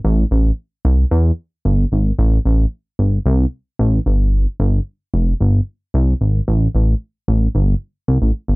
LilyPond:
\new Staff \with { instrumentName = "Analog synth bass" } { \clef bass \time 4/4 \key a \minor \tempo 4 = 112 a,,8 a,,8 r8 c,8 e,8 r8 g,,8 gis,,8 | a,,8 a,,8 r8 g,,8 c,8 r8 a,,8 g,,8~ | g,,8 g,,8 r8 f,,8 g,,8 r8 c,8 gis,,8 | a,,8 a,,8 r8 a,,8 g,,8 r8 c,16 a,,16 r16 g,,16 | }